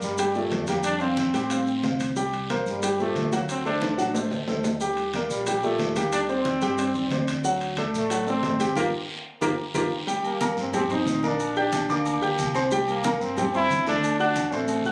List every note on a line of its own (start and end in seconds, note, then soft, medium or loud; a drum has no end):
0.00 0.48 G2 medium
0.00 0.37 G3 medium
0.00 0.13 A#3 medium
0.00 0.13 A#4 medium
0.00 0.13 D5 medium
0.00 high conga soft
0.00 short guiro medium
0.00 maracas medium
0.18 0.32 G3 medium
0.18 0.32 G4 medium
0.18 0.33 G5 medium
0.18 high conga soft
0.18 high timbale medium
0.18 long guiro medium
0.18 maracas medium
0.35 0.63 A#2 medium
0.35 0.67 A3 medium
0.35 0.63 G4 medium
0.35 0.63 D5 medium
0.35 high conga soft
0.35 maracas soft
0.51 1.28 F2 medium
0.51 high conga medium
0.51 high timbale medium
0.51 low timbale medium
0.51 short guiro medium
0.51 maracas soft
0.67 0.95 G3 medium
0.67 0.75 A#3 medium
0.67 0.96 G4 medium
0.67 0.96 G5 medium
0.67 high conga medium
0.67 high timbale medium
0.67 short guiro medium
0.67 maracas medium
0.83 1.02 D4 loud
0.83 high timbale medium
0.83 long guiro medium
0.83 maracas medium
1.00 2.00 C4 medium
1.00 1.28 C4 medium
1.00 1.28 C5 medium
1.00 1.28 F5 medium
1.00 high conga soft
1.00 maracas soft
1.17 high conga medium
1.17 high timbale medium
1.17 low timbale medium
1.17 short guiro medium
1.17 maracas soft
1.33 1.80 A2 medium
1.33 1.48 G3 medium
1.33 1.48 G4 medium
1.33 1.48 G5 medium
1.33 high conga soft
1.33 high timbale medium
1.33 short guiro medium
1.33 maracas medium
1.50 1.78 C4 medium
1.50 1.78 C5 medium
1.50 1.78 F5 medium
1.50 high conga soft
1.50 high timbale medium
1.50 long guiro medium
1.50 maracas medium
1.67 high conga soft
1.67 maracas soft
1.83 2.60 C2 medium
1.83 2.11 C4 medium
1.83 2.11 C5 medium
1.83 2.11 F5 medium
1.83 high conga medium
1.83 high timbale medium
1.83 low timbale medium
1.83 short guiro medium
1.83 maracas soft
2.00 high conga medium
2.00 high timbale loud
2.00 short guiro medium
2.00 maracas medium
2.16 2.44 G3 medium
2.16 2.44 G4 medium
2.16 2.44 G5 medium
2.16 high conga soft
2.16 long guiro medium
2.16 maracas medium
2.33 high conga soft
2.33 high timbale medium
2.33 maracas soft
2.49 2.77 A#3 medium
2.49 2.77 A#4 medium
2.49 2.77 C5 medium
2.49 high conga medium
2.49 high timbale medium
2.49 low timbale medium
2.49 short guiro medium
2.49 maracas soft
2.65 3.12 G2 loud
2.65 2.99 G3 medium
2.65 high conga soft
2.65 short guiro medium
2.65 maracas medium
2.83 2.96 G3 medium
2.83 2.97 G4 medium
2.83 2.97 G5 medium
2.83 high conga soft
2.83 high timbale medium
2.83 long guiro medium
2.83 maracas medium
2.99 3.26 A#2 medium
2.99 3.31 A3 medium
2.99 3.27 G4 medium
2.99 3.27 C5 medium
2.99 high conga soft
2.99 maracas soft
3.14 3.92 D2 medium
3.14 high conga medium
3.14 high timbale medium
3.14 low timbale medium
3.14 short guiro medium
3.14 maracas soft
3.32 3.59 F#3 medium
3.32 3.41 A#3 medium
3.32 3.60 F#4 medium
3.32 3.60 F#5 medium
3.32 high conga medium
3.32 high timbale medium
3.32 short guiro medium
3.32 maracas medium
3.49 3.65 C4 loud
3.49 high conga soft
3.49 high timbale medium
3.49 long guiro medium
3.49 maracas medium
3.65 3.92 A3 medium
3.65 4.28 D4 medium
3.65 3.93 A4 medium
3.65 3.93 C5 medium
3.65 high conga soft
3.65 maracas soft
3.81 high conga medium
3.81 high timbale medium
3.81 short guiro medium
3.81 maracas soft
3.97 4.29 A1 medium
3.97 4.12 F#3 medium
3.97 4.12 F#4 medium
3.97 4.12 F#5 medium
3.97 short guiro medium
3.97 maracas medium
4.14 4.41 A3 medium
4.14 4.42 A4 medium
4.14 4.42 C5 medium
4.14 high conga soft
4.14 low timbale medium
4.14 long guiro medium
4.14 maracas medium
4.31 4.46 D2 medium
4.31 high conga soft
4.31 low timbale medium
4.31 maracas soft
4.47 5.24 D#2 medium
4.47 4.75 A3 medium
4.47 4.75 A4 medium
4.47 4.75 C5 medium
4.47 high conga medium
4.47 low timbale medium
4.47 short guiro medium
4.47 maracas soft
4.64 high conga medium
4.64 low timbale loud
4.64 short guiro medium
4.64 maracas medium
4.81 5.08 G3 medium
4.81 5.08 G4 medium
4.81 5.08 G5 medium
4.81 long guiro medium
4.81 maracas loud
4.97 high conga soft
4.97 high timbale medium
4.97 maracas soft
5.13 5.41 A#3 medium
5.13 5.42 A#4 medium
5.13 5.42 D5 medium
5.13 high conga medium
5.13 high timbale medium
5.13 low timbale medium
5.13 short guiro medium
5.13 maracas soft
5.29 5.76 A#1 medium
5.29 5.61 G3 medium
5.29 high conga soft
5.29 short guiro medium
5.29 maracas medium
5.46 5.61 G3 medium
5.46 5.61 G4 medium
5.46 5.61 G5 medium
5.46 high conga soft
5.46 high timbale medium
5.46 long guiro medium
5.46 maracas medium
5.63 5.90 A#2 medium
5.63 5.97 A3 medium
5.63 5.90 G4 medium
5.63 5.91 D5 medium
5.63 high conga soft
5.63 maracas soft
5.79 6.56 D#2 medium
5.79 high conga medium
5.79 high timbale medium
5.79 low timbale medium
5.79 short guiro medium
5.79 maracas soft
5.96 6.23 G3 medium
5.96 6.12 A#3 medium
5.96 6.23 G4 medium
5.96 6.24 G5 medium
5.96 high conga medium
5.96 high timbale medium
5.96 short guiro medium
5.96 maracas medium
6.12 6.20 D4 loud
6.12 high conga soft
6.12 high timbale medium
6.12 long guiro medium
6.12 maracas medium
6.29 7.24 C4 loud
6.29 6.56 C4 medium
6.29 6.56 C5 medium
6.29 6.56 D5 medium
6.29 high conga soft
6.29 maracas soft
6.45 high conga medium
6.45 high timbale medium
6.45 low timbale medium
6.45 short guiro medium
6.45 maracas soft
6.61 6.92 G2 medium
6.61 6.76 G3 medium
6.61 6.76 G4 medium
6.61 6.76 G5 medium
6.61 high conga soft
6.61 high timbale medium
6.61 short guiro medium
6.61 maracas medium
6.78 7.05 C4 medium
6.78 7.06 C5 medium
6.78 7.06 D5 medium
6.78 high conga soft
6.78 high timbale medium
6.78 long guiro medium
6.78 maracas medium
6.94 7.10 D#2 medium
6.94 high conga soft
6.94 maracas soft
7.10 7.88 D2 medium
7.10 7.38 C4 medium
7.10 7.38 C5 medium
7.10 7.39 D5 medium
7.10 high conga medium
7.10 high timbale medium
7.10 low timbale medium
7.10 short guiro medium
7.10 maracas soft
7.27 high conga medium
7.27 high timbale medium
7.27 short guiro medium
7.27 maracas medium
7.44 7.71 F#3 medium
7.44 7.72 F#4 medium
7.44 7.72 F#5 medium
7.44 high conga soft
7.44 long guiro medium
7.44 maracas loud
7.60 high conga soft
7.60 high timbale medium
7.60 maracas soft
7.77 8.05 A3 medium
7.77 8.05 A4 medium
7.77 8.05 D5 medium
7.77 high conga medium
7.77 high timbale medium
7.77 low timbale medium
7.77 short guiro medium
7.77 maracas soft
7.93 8.40 A1 medium
7.93 8.26 A3 loud
7.93 high conga soft
7.93 short guiro medium
7.93 maracas medium
8.10 8.24 F#3 medium
8.10 8.24 F#4 medium
8.10 8.24 F#5 medium
8.10 high conga soft
8.10 high timbale medium
8.10 long guiro medium
8.10 maracas medium
8.27 8.54 A3 medium
8.27 8.74 C4 loud
8.27 8.54 A4 medium
8.27 8.54 D5 medium
8.27 high conga soft
8.27 maracas soft
8.42 8.73 G1 medium
8.42 high conga medium
8.42 high timbale medium
8.42 low timbale medium
8.42 short guiro medium
8.42 maracas soft
8.59 8.73 G3 medium
8.59 8.74 G4 medium
8.59 8.74 G5 medium
8.59 high conga medium
8.59 high timbale medium
8.59 short guiro medium
8.59 maracas medium
8.76 8.88 G1 loud
8.76 8.84 A#3 medium
8.76 8.87 F4 medium
8.76 8.87 G4 loud
8.76 8.87 A#4 medium
8.76 high conga loud
8.76 high timbale medium
8.76 long guiro loud
8.76 maracas loud
9.41 9.54 G1 medium
9.41 9.49 A#3 loud
9.41 9.53 F4 medium
9.41 9.53 G4 medium
9.41 9.53 A#4 medium
9.41 high conga loud
9.41 high timbale medium
9.41 long guiro loud
9.41 maracas loud
9.74 9.87 G1 medium
9.74 9.83 A#3 medium
9.74 9.85 F4 medium
9.74 9.85 G4 loud
9.74 9.85 A#4 medium
9.74 high conga loud
9.74 high timbale loud
9.74 long guiro medium
9.74 maracas loud
10.07 10.34 G3 medium
10.07 10.35 G4 medium
10.07 10.35 G5 medium
10.07 high conga soft
10.07 long guiro medium
10.07 maracas medium
10.24 10.56 A#3 medium
10.24 high conga soft
10.24 low agogo medium
10.24 maracas soft
10.41 10.68 A#3 medium
10.41 10.68 A#4 medium
10.41 10.68 A#5 medium
10.41 high conga medium
10.41 low agogo loud
10.41 short guiro medium
10.41 maracas medium
10.57 11.03 G2 loud
10.57 10.74 C4 medium
10.57 short guiro medium
10.57 maracas soft
10.73 10.87 G3 medium
10.73 10.83 C4 loud
10.73 10.87 G4 medium
10.73 10.88 G5 medium
10.73 high conga soft
10.73 low conga medium
10.73 low agogo loud
10.73 long guiro medium
10.73 maracas medium
10.90 11.17 C4 medium
10.90 11.27 D#4 loud
10.90 11.17 C5 medium
10.90 11.18 C6 medium
10.90 high conga soft
10.90 low conga medium
10.90 low agogo medium
10.90 maracas soft
11.06 11.83 A#1 medium
11.06 high conga medium
11.06 low timbale medium
11.06 short guiro medium
11.06 maracas medium
11.23 11.50 A#3 medium
11.23 11.57 D4 loud
11.23 11.50 A#4 medium
11.23 11.51 A#5 medium
11.23 high conga medium
11.23 low agogo medium
11.23 short guiro medium
11.23 maracas soft
11.40 low agogo loud
11.40 long guiro medium
11.40 maracas medium
11.56 11.88 D4 loud
11.56 11.83 G4 medium
11.56 11.84 G5 medium
11.56 11.84 G6 medium
11.56 high conga soft
11.56 maracas soft
11.72 high conga loud
11.72 low agogo medium
11.72 short guiro medium
11.72 maracas medium
11.89 12.20 D2 loud
11.89 12.52 A#3 medium
11.89 12.16 D4 medium
11.89 12.16 D5 medium
11.89 12.17 D6 medium
11.89 high conga soft
11.89 low agogo medium
11.89 short guiro medium
11.89 maracas soft
12.06 high conga soft
12.06 low agogo loud
12.06 long guiro medium
12.06 maracas medium
12.22 12.37 D2 medium
12.22 12.49 G4 medium
12.22 12.49 G5 medium
12.22 12.49 G6 medium
12.22 high conga soft
12.22 maracas soft
12.38 13.15 C2 medium
12.38 high conga medium
12.38 low agogo medium
12.38 short guiro medium
12.38 maracas medium
12.55 12.68 C4 medium
12.55 12.69 C5 medium
12.55 12.69 C6 medium
12.55 high conga soft
12.55 low agogo loud
12.55 short guiro medium
12.55 maracas soft
12.71 12.99 G3 medium
12.71 12.99 G4 medium
12.71 12.99 G5 medium
12.71 high conga soft
12.71 long guiro medium
12.71 maracas medium
12.88 13.24 A#3 medium
12.88 high conga soft
12.88 low agogo medium
12.88 maracas soft
13.04 13.32 A#3 medium
13.04 13.32 A#4 medium
13.04 13.32 A#5 medium
13.04 high conga loud
13.04 low agogo loud
13.04 short guiro medium
13.04 maracas medium
13.20 13.66 G2 medium
13.20 13.38 C4 medium
13.20 high conga soft
13.20 short guiro medium
13.20 maracas soft
13.36 13.51 G3 medium
13.36 13.46 C4 loud
13.36 13.51 G4 medium
13.36 13.51 G5 medium
13.36 high conga soft
13.36 low conga medium
13.36 low agogo loud
13.36 long guiro medium
13.36 maracas medium
13.53 13.81 C4 medium
13.53 13.85 E4 loud
13.53 13.81 C5 medium
13.53 13.81 C6 medium
13.53 high conga soft
13.53 low agogo medium
13.53 maracas soft
13.70 14.47 D2 medium
13.70 high conga medium
13.70 short guiro medium
13.70 maracas medium
13.86 14.14 A3 medium
13.86 14.18 D4 loud
13.86 14.14 A4 medium
13.86 14.14 A5 medium
13.86 high conga medium
13.86 low agogo medium
13.86 short guiro medium
13.86 maracas soft
14.03 low agogo loud
14.03 long guiro medium
14.03 maracas medium
14.20 14.54 D4 loud
14.20 14.47 F#4 medium
14.20 14.47 F#5 medium
14.20 14.47 F#6 medium
14.20 high conga soft
14.20 maracas soft
14.35 high conga medium
14.35 low agogo medium
14.35 short guiro medium
14.35 maracas medium
14.51 14.82 A1 medium
14.51 14.92 A3 medium
14.51 14.80 C4 medium
14.51 14.80 C5 medium
14.51 14.80 C6 medium
14.51 high conga soft
14.51 low agogo medium
14.51 short guiro medium
14.51 maracas soft
14.68 high conga soft
14.68 low agogo loud
14.68 long guiro medium
14.68 maracas medium
14.85 14.92 A#1 medium
14.85 14.92 F#4 medium
14.85 14.92 F#5 medium
14.85 14.92 F#6 medium
14.85 high conga soft
14.85 maracas soft